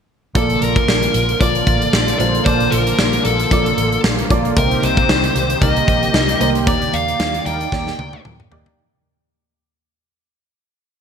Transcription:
0.34 0.54 A#1 loud
0.34 1.10 A#2 medium
0.34 4.52 D3 medium
0.34 4.52 F3 medium
0.34 1.30 A#3 medium
0.34 8.73 A#3 medium
0.34 1.30 F4 medium
0.34 4.52 F4 medium
0.34 0.63 A4 medium
0.34 1.31 D5 medium
0.34 1.31 A5 medium
0.34 kick loud
0.34 closed hi-hat medium
0.50 closed hi-hat soft
0.61 0.81 A#1 medium
0.61 1.40 A#4 medium
0.61 closed hi-hat medium
0.76 kick loud
0.76 closed hi-hat soft
0.88 1.07 A#1 medium
0.88 snare loud
1.03 closed hi-hat medium
1.14 1.33 A#1 medium
1.14 closed hi-hat medium
1.29 closed hi-hat soft
1.40 1.60 A#1 medium
1.40 2.12 A#3 medium
1.40 2.12 F4 medium
1.40 2.12 A4 medium
1.40 2.18 D5 loud
1.40 2.13 D5 medium
1.40 kick medium
1.40 closed hi-hat medium
1.55 closed hi-hat soft
1.67 1.86 A1 medium
1.67 kick medium
1.67 closed hi-hat medium
1.82 closed hi-hat soft
1.93 2.12 A#1 medium
1.93 snare loud
2.08 closed hi-hat medium
2.19 2.38 A#1 medium
2.19 2.43 A#3 medium
2.19 2.43 F4 medium
2.19 2.44 A4 medium
2.19 2.44 C5 medium
2.19 2.45 D5 medium
2.19 closed hi-hat medium
2.35 closed hi-hat soft
2.45 2.65 A#1 loud
2.45 3.21 A#2 medium
2.45 3.41 A#3 medium
2.45 3.41 F4 medium
2.45 2.73 C5 medium
2.45 3.42 D5 medium
2.45 3.42 A5 medium
2.45 kick loud
2.45 closed hi-hat medium
2.60 closed hi-hat soft
2.71 2.91 A#1 medium
2.71 3.24 A#4 medium
2.71 closed hi-hat medium
2.87 closed hi-hat soft
2.99 3.18 A#1 medium
2.99 snare loud
3.13 closed hi-hat medium
3.25 3.44 A#1 medium
3.25 4.00 A4 medium
3.25 closed hi-hat medium
3.40 closed hi-hat medium
3.51 3.70 A#1 medium
3.51 4.23 A#3 medium
3.51 4.23 F4 medium
3.51 4.23 A4 medium
3.51 4.23 D5 medium
3.51 kick loud
3.51 closed hi-hat medium
3.66 closed hi-hat soft
3.78 3.97 A1 medium
3.78 closed hi-hat medium
3.92 closed hi-hat soft
4.04 4.23 A#1 medium
4.04 snare loud
4.19 closed hi-hat medium
4.30 4.49 A#1 medium
4.30 4.54 A#3 medium
4.30 4.54 F4 medium
4.30 4.54 A4 medium
4.30 4.54 D5 medium
4.30 kick medium
4.30 closed hi-hat medium
4.45 closed hi-hat soft
4.56 4.75 C2 loud
4.56 5.32 C3 medium
4.56 8.73 D#3 medium
4.56 5.52 A#3 medium
4.56 6.65 C4 medium
4.56 5.52 D#4 medium
4.56 8.73 G4 medium
4.56 5.52 G4 medium
4.56 4.84 A#4 medium
4.56 5.52 C5 medium
4.56 kick loud
4.56 closed hi-hat medium
4.71 closed hi-hat soft
4.83 5.02 C2 loud
4.83 5.62 C5 medium
4.83 closed hi-hat medium
4.97 kick loud
4.97 closed hi-hat soft
5.09 5.28 C2 loud
5.09 snare loud
5.24 closed hi-hat medium
5.35 5.54 C2 loud
5.35 closed hi-hat medium
5.50 closed hi-hat medium
5.61 5.81 C2 loud
5.61 6.33 A#3 medium
5.61 6.33 D#4 medium
5.61 6.33 G4 medium
5.61 6.34 A#4 medium
5.61 6.40 D#5 loud
5.61 kick loud
5.61 closed hi-hat medium
5.76 closed hi-hat soft
5.88 6.07 A#1 medium
5.88 kick medium
5.88 closed hi-hat medium
6.03 closed hi-hat soft
6.14 6.33 C2 loud
6.14 snare loud
6.29 closed hi-hat medium
6.40 6.67 C2 loud
6.40 6.64 A#3 medium
6.40 6.64 D#4 medium
6.40 6.64 G4 medium
6.40 6.65 C5 medium
6.40 6.48 D#5 medium
6.40 closed hi-hat medium
6.55 closed hi-hat soft
6.67 6.86 D#2 loud
6.67 7.42 D#3 medium
6.67 7.62 A#3 medium
6.67 7.62 D#4 medium
6.67 7.63 G4 medium
6.67 8.76 D5 medium
6.67 6.94 D5 medium
6.67 7.63 D5 medium
6.67 kick loud
6.67 closed hi-hat medium
6.82 closed hi-hat soft
6.93 7.12 D#2 loud
6.93 7.46 F5 loud
6.93 closed hi-hat medium
7.08 closed hi-hat soft
7.20 7.39 D#2 medium
7.20 snare loud
7.20 tambourine medium
7.34 closed hi-hat medium
7.45 7.65 D#2 loud
7.45 7.68 G3 medium
7.45 7.68 D#4 medium
7.45 7.68 A#4 loud
7.45 8.21 G5 loud
7.45 closed hi-hat medium
7.61 closed hi-hat medium
7.72 7.91 D#2 loud
7.72 8.44 A#3 medium
7.72 8.44 D#4 medium
7.72 8.44 G4 medium
7.72 8.44 D5 medium
7.72 kick loud
7.72 snare medium
7.87 snare medium
7.99 8.18 D2 medium
7.99 high tom medium
8.13 high tom medium
8.25 8.44 D#2 loud
8.25 mid tom medium
8.40 mid tom medium
8.51 8.70 D#2 loud
8.51 8.75 A#3 medium
8.51 8.75 D#4 medium
8.51 8.75 G4 medium
8.51 8.75 D5 loud
8.51 floor tom loud
8.66 floor tom medium

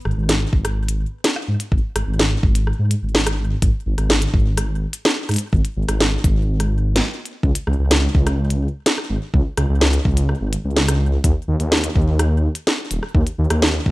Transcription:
0.05 0.13 G#1 loud
0.05 cross-stick medium
0.17 0.46 G#1 medium
0.29 snare loud
0.29 closed hi-hat medium
0.53 1.06 G#1 medium
0.53 kick loud
0.65 cross-stick medium
0.65 closed hi-hat medium
0.89 closed hi-hat medium
1.24 snare loud
1.24 closed hi-hat medium
1.36 cross-stick medium
1.48 1.56 G#2 medium
1.60 closed hi-hat medium
1.72 1.80 G#1 medium
1.72 kick loud
1.96 2.03 G#1 medium
1.96 cross-stick medium
1.96 closed hi-hat medium
2.08 2.37 G#1 medium
2.19 snare loud
2.43 2.72 G#1 medium
2.43 kick loud
2.55 closed hi-hat medium
2.67 cross-stick medium
2.79 2.95 G#2 medium
2.91 closed hi-hat medium
3.03 3.56 G#1 medium
3.15 snare loud
3.27 cross-stick medium
3.27 closed hi-hat medium
3.62 3.70 G#1 loud
3.62 kick loud
3.62 closed hi-hat medium
3.86 3.94 G#1 loud
3.98 4.27 G#1 medium
3.98 cross-stick soft
3.98 closed hi-hat soft
4.10 snare loud
4.22 closed hi-hat medium
4.34 4.87 G#1 medium
4.34 kick loud
4.57 cross-stick medium
4.57 closed hi-hat medium
4.93 closed hi-hat medium
5.05 snare loud
5.29 5.37 G#2 medium
5.29 cross-stick soft
5.29 closed hi-hat soft
5.31 closed hi-hat soft
5.34 closed hi-hat medium
5.36 closed hi-hat medium
5.38 closed hi-hat medium
5.53 5.61 G#1 loud
5.53 kick loud
5.65 closed hi-hat medium
5.77 5.84 G#1 medium
5.89 6.18 G#1 medium
5.89 cross-stick medium
5.89 closed hi-hat medium
6.00 snare loud
6.24 6.47 G#1 medium
6.24 kick loud
6.24 closed hi-hat medium
6.48 7.01 G#1 medium
6.60 cross-stick soft
6.60 closed hi-hat medium
6.96 snare loud
6.96 closed hi-hat medium
7.26 closed hi-hat medium
7.43 7.51 C#2 loud
7.43 kick loud
7.55 closed hi-hat medium
7.67 7.75 C#2 loud
7.67 cross-stick soft
7.79 8.08 C#2 medium
7.91 snare loud
7.91 closed hi-hat medium
8.15 8.68 C#2 medium
8.15 kick loud
8.27 cross-stick medium
8.27 closed hi-hat soft
8.50 closed hi-hat medium
8.86 snare loud
8.86 closed hi-hat medium
8.98 cross-stick medium
9.10 9.18 G#1 medium
9.34 9.42 C#2 loud
9.34 kick loud
9.57 9.65 C#2 loud
9.57 cross-stick medium
9.57 closed hi-hat medium
9.69 9.99 C#2 medium
9.81 snare loud
9.93 closed hi-hat soft
10.05 10.34 C#2 medium
10.05 kick loud
10.17 closed hi-hat medium
10.29 cross-stick soft
10.41 10.56 G#1 medium
10.53 closed hi-hat medium
10.65 11.18 C#2 medium
10.76 snare loud
10.88 cross-stick medium
10.88 closed hi-hat medium
11.24 11.32 D#2 loud
11.24 kick loud
11.24 closed hi-hat medium
11.48 11.56 D#2 loud
11.60 11.89 D#2 medium
11.60 closed hi-hat medium
11.72 snare loud
11.84 closed hi-hat medium
11.95 12.48 D#2 medium
11.95 kick medium
12.19 cross-stick medium
12.19 closed hi-hat medium
12.55 closed hi-hat medium
12.67 snare loud
12.91 12.99 D#1 medium
12.91 closed hi-hat medium
13.03 cross-stick medium
13.15 13.22 D#2 loud
13.15 kick loud
13.27 closed hi-hat medium
13.38 13.46 D#2 loud
13.50 13.80 D#2 medium
13.50 cross-stick medium
13.50 closed hi-hat medium
13.62 snare loud
13.86 13.91 D#2 medium
13.86 kick medium

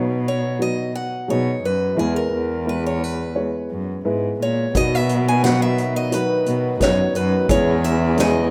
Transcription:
0.00 1.94 B1 medium
0.00 1.00 B2 medium
0.00 1.94 B2 medium
0.00 0.59 F#3 medium
0.00 0.60 B3 medium
0.00 0.60 D#4 medium
0.00 0.28 B4 medium
0.00 1.97 B4 medium
0.00 0.34 C#5 medium
0.28 0.59 C#5 medium
0.59 1.02 F#3 medium
0.59 1.02 B3 medium
0.59 1.02 D#4 medium
0.59 1.02 F#4 medium
0.59 0.93 D#5 medium
0.95 1.30 F#5 medium
1.28 1.58 B2 medium
1.28 1.71 F#3 medium
1.28 1.71 B3 medium
1.28 1.71 D#4 medium
1.28 1.71 G#4 medium
1.28 1.65 C#5 medium
1.63 1.92 F#2 medium
1.63 1.99 B4 medium
1.97 4.70 E2 medium
1.97 2.27 E2 medium
1.97 4.71 E3 medium
1.97 2.39 G#3 medium
1.97 2.39 B3 medium
1.97 2.39 E4 medium
1.97 2.16 G#4 medium
1.97 2.40 B4 medium
2.16 2.69 A#4 medium
2.32 3.47 E2 medium
2.65 3.08 G#3 medium
2.65 3.09 B3 medium
2.65 3.08 E4 medium
2.65 3.09 B4 medium
2.65 2.86 B4 medium
2.86 3.04 C#5 medium
3.04 4.42 B4 medium
3.35 3.78 G#3 medium
3.35 3.78 B3 medium
3.35 3.78 E4 medium
3.35 3.78 C#5 medium
3.71 4.02 F#2 medium
4.05 4.37 G#2 medium
4.05 4.48 G#3 medium
4.05 4.48 B3 medium
4.05 4.48 E4 medium
4.05 4.48 B4 medium
4.40 4.71 A#2 medium
4.40 4.77 C#5 medium
4.75 7.45 B1 medium
4.75 6.18 B2 loud
4.75 7.46 B2 medium
4.75 7.47 D#3 medium
4.75 5.17 F#3 medium
4.75 7.47 F#3 medium
4.75 5.17 B3 medium
4.75 7.47 B3 medium
4.75 5.17 D#4 medium
4.75 5.17 B4 medium
4.75 4.95 D#5 medium
4.75 kick medium
4.75 closed hi-hat medium
4.95 5.28 E5 medium
5.09 closed hi-hat soft
5.28 5.44 G#5 medium
5.43 5.85 F#3 medium
5.43 5.85 B3 medium
5.43 5.86 D#4 medium
5.43 5.86 B4 medium
5.43 5.62 F#5 medium
5.43 snare medium
5.43 closed hi-hat medium
5.62 5.94 E5 medium
5.78 closed hi-hat soft
5.96 6.13 D#5 medium
6.12 6.54 F#3 medium
6.12 6.54 B3 medium
6.12 6.54 D#4 medium
6.12 6.54 B4 medium
6.12 6.82 B4 medium
6.12 closed hi-hat medium
6.46 6.75 B2 medium
6.46 closed hi-hat soft
6.80 7.09 F#2 medium
6.80 7.22 F#3 medium
6.80 7.23 B3 medium
6.80 7.23 D#4 medium
6.80 7.23 B4 medium
6.80 7.14 C#5 medium
6.80 kick medium
6.80 snare medium
6.80 closed hi-hat medium
7.15 7.44 F#2 medium
7.15 7.50 B4 medium
7.15 closed hi-hat soft
7.49 8.51 E2 loud
7.49 8.51 E2 medium
7.49 8.51 E3 medium
7.49 7.91 G#3 medium
7.49 7.91 C#4 medium
7.49 8.51 C#4 medium
7.49 7.91 E4 medium
7.49 8.51 G#4 medium
7.49 7.91 B4 medium
7.49 7.85 C#5 medium
7.49 kick medium
7.49 closed hi-hat medium
7.84 8.19 E5 medium
7.84 closed hi-hat medium
8.17 8.51 G#3 medium
8.17 8.51 C#4 medium
8.17 8.51 E4 medium
8.17 8.51 B4 medium
8.17 8.51 D#5 medium
8.17 snare medium
8.17 closed hi-hat medium

